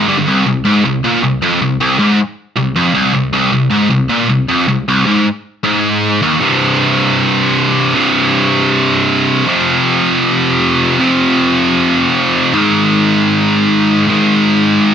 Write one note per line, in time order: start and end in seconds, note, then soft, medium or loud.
0.08 0.16 G2 medium
0.08 0.16 D3 loud
0.08 0.17 G3 loud
0.18 0.27 G2 medium
0.18 0.27 D3 medium
0.27 0.45 C2 loud
0.47 0.62 C2 medium
0.65 0.84 G#2 loud
0.85 1.00 C2 medium
1.04 1.23 A#2 loud
1.23 1.39 C2 medium
1.42 1.61 F2 loud
1.61 1.77 C2 medium
1.80 1.99 C2 loud
1.99 2.18 G#2 loud
2.57 2.72 C2 medium
2.76 2.94 F2 medium
2.94 3.13 C2 loud
3.14 3.30 C2 medium
3.33 3.51 C2 loud
3.52 3.68 C2 medium
3.70 3.90 G#2 loud
3.90 4.06 C2 medium
4.09 4.29 A#2 loud
4.29 4.45 C2 medium
4.48 4.67 F2 loud
4.68 4.83 C2 medium
4.88 5.06 C2 loud
5.06 5.25 G#2 loud
5.64 6.21 G#2 loud
6.22 6.40 D#2 loud
6.40 7.93 C2 medium
6.40 7.93 G2 medium
6.40 7.94 C3 medium
7.94 9.45 C2 medium
7.94 9.47 G2 loud
7.94 9.46 C3 loud
9.46 10.98 F2 medium
9.46 10.99 C3 medium
9.46 11.00 F3 loud
10.99 12.52 F2 medium
10.99 12.52 C3 loud
10.99 12.53 F3 loud
12.53 14.06 G#2 medium
12.53 14.06 D#3 medium
12.53 14.09 G#3 medium
14.07 14.95 G#2 loud
14.07 14.95 D#3 loud
14.07 14.95 G#3 loud